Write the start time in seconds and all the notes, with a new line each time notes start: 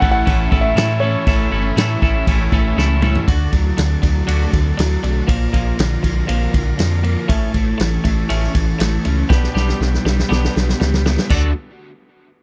Already playing: A4 C#5 E5 C#6
0.01 A1 A2 E3 A3 C#4 E4 A4, kick
0.11 F#5
0.25 A1 A2 E3 A3 C#4 E4 A4, kick, crash
0.50 A1 A2 E3 A3 C#4 E4 A4, kick
0.61 E5
0.75 A2 E3 A3 C#4 E4 A4, snare, crash
1.00 A2 E3 A3 C#4 E4 A4 C#5
1.26 A1 A2 E3 A3 C#4 E4 A4 B5, kick, crash
1.51 G1 A2 E3 A3 C#4 E4 A4
1.76 A2 E3 A3 C#4 E4 A4, snare, crash
2.01 A1 A2 E3 A3 C#4 E4 A4, kick
2.27 A1 A2 E3 A3 C#4 E4 A4, kick, crash
2.52 A1 A2 E3 A3 C#4 E4 A4, kick
2.77 C#2 A2 E3 A3 C#4 E4 A4, snare
3.01 A2 E3 A3 C#4 E4 A4, mid tom
3.15 floor tom
3.26 D2 D3 D4 F#4 A4 D5 A5, kick, ride
3.52 D2 D3 F#3 D4, kick, ride
3.77 D2 D3 D4, snare, ride
4.02 D2 D3 F#3 D4, kick, ride
4.27 D2 D3 A3 D4 F#4, ride
4.52 D2 D3 D4, kick, ride
4.77 D2 D3 F#3 D4, snare, ride
5.03 B1 D3 A3 D4, ride
5.27 A#1 A#2 F3 A#3 F4 A#4 A#5, kick, ride
5.52 A#1 A#2 F3 A#3, kick, ride
5.77 A#1 A#2 D3 F3, snare, ride
6.03 A#1 A#2 F3, kick, ride
6.27 A#1 A#2 F3 A#3, ride
6.53 A#1 A#2 D3 F3, kick, ride
6.78 F2 A#2 F3, snare, ride
7.03 A#2 F3 A#3, ride
7.28 A1 A2 A3 C#4 E4 A4 C#5 A5, kick, ride
7.53 A1 A2 A3, kick, ride
7.78 A1 A2 E3 A3, snare, ride
8.04 A1 A2 A3, kick, ride
8.29 A1 A2 A3 C#4, ride
8.44 snare
8.54 A1 A2 E3 A3, kick, ride
8.79 A1 A2 A3, snare, ride
9.05 C#2 A2 A3 C#4, ride
9.29 B1 B2 B3 D4 G4 B4 G5, kick, snare
9.43 snare
9.54 B1 G3 B3 D4 G4, snare
9.69 snare
9.80 B1 B2 B3 D4, snare
9.94 snare
10.05 B1 G3 B3 D4, snare
10.19 snare
10.29 B1 B3 D4 G4, snare
10.45 snare
10.55 B1 B2 B3 D4, snare
10.69 snare
10.80 C#2 G3 B3 D4, snare
10.94 snare
11.06 B3 D4, snare
11.19 snare
11.30 D2 D3 A3 D4 F#4 A4 A5, kick, crash